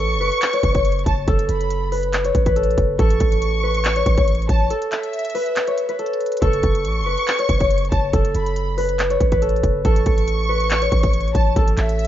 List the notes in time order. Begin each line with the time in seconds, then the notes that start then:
Already playing: A4 B4 C#5 C#6
0.00 A1
0.16 F#1
0.21 B4
0.32 closed hi-hat
0.42 clap, closed hi-hat
0.53 C#5, closed hi-hat
0.63 F#1, kick, closed hi-hat
0.75 C#5, kick, closed hi-hat
0.85 closed hi-hat
0.92 closed hi-hat
0.99 closed hi-hat
1.06 F#1 A5, kick, closed hi-hat
1.28 F#1 A4, kick, closed hi-hat
1.39 closed hi-hat
1.49 F#1 B5, closed hi-hat
1.61 closed hi-hat
1.70 closed hi-hat
1.92 B4, open hi-hat
2.03 closed hi-hat
2.13 clap, closed hi-hat
2.25 C#5, closed hi-hat
2.35 A1, kick, closed hi-hat
2.46 B4, kick, closed hi-hat
2.56 A4, closed hi-hat
2.63 closed hi-hat
2.71 closed hi-hat
2.78 F#1, kick, closed hi-hat
2.99 A1 A4 C#6, kick, closed hi-hat
3.10 closed hi-hat
3.20 A1, kick, closed hi-hat
3.32 closed hi-hat
3.42 closed hi-hat
3.63 B4
3.75 closed hi-hat
3.84 clap, closed hi-hat
3.96 C#5, closed hi-hat
4.06 A1, kick, closed hi-hat
4.17 A1 C#5, kick, closed hi-hat
4.28 closed hi-hat
4.35 closed hi-hat
4.42 closed hi-hat
4.49 A1 A5, kick, closed hi-hat
4.70 A4, closed hi-hat
4.82 closed hi-hat
4.92 E5, clap, closed hi-hat
5.03 closed hi-hat
5.13 closed hi-hat
5.19 closed hi-hat
5.25 closed hi-hat
5.30 closed hi-hat
5.35 B4, open hi-hat
5.46 closed hi-hat
5.56 clap, closed hi-hat
5.67 C#5, closed hi-hat
5.78 closed hi-hat
5.89 B4, closed hi-hat
5.99 A4, closed hi-hat
6.06 closed hi-hat
6.13 closed hi-hat
6.21 closed hi-hat
6.26 closed hi-hat
6.32 closed hi-hat
6.37 closed hi-hat
6.42 F#1 A4 C#6, kick, closed hi-hat
6.53 closed hi-hat
6.63 F#1, kick, closed hi-hat
6.75 closed hi-hat
6.85 A1, closed hi-hat
7.01 F#1
7.06 B4
7.17 closed hi-hat
7.27 clap, closed hi-hat
7.39 C#5, closed hi-hat
7.49 F#1, kick, closed hi-hat
7.60 C#5, kick, closed hi-hat
7.71 closed hi-hat
7.78 closed hi-hat
7.85 closed hi-hat
7.92 F#1 A5, kick, closed hi-hat
8.13 F#1 A4, kick, closed hi-hat
8.25 closed hi-hat
8.35 F#1 B5, closed hi-hat
8.46 closed hi-hat
8.56 closed hi-hat
8.78 B4, open hi-hat
8.89 closed hi-hat
8.99 clap, closed hi-hat
9.10 C#5, closed hi-hat
9.20 A1, kick, closed hi-hat
9.32 B4, kick, closed hi-hat
9.42 A4, closed hi-hat
9.49 closed hi-hat
9.56 closed hi-hat
9.63 F#1, kick, closed hi-hat
9.85 A1 A4 C#6, kick, closed hi-hat
9.96 closed hi-hat
10.06 A1, kick, closed hi-hat
10.18 closed hi-hat
10.28 closed hi-hat
10.49 B4
10.60 closed hi-hat
10.70 clap, closed hi-hat
10.82 C#5, closed hi-hat
10.92 A1, kick, closed hi-hat
11.03 C#5, kick, closed hi-hat
11.13 closed hi-hat
11.21 closed hi-hat
11.28 closed hi-hat
11.35 A1 A5, kick, closed hi-hat
11.56 A1 A4, kick, closed hi-hat
11.68 closed hi-hat
11.77 A1 E5, clap, closed hi-hat
11.89 closed hi-hat
11.99 closed hi-hat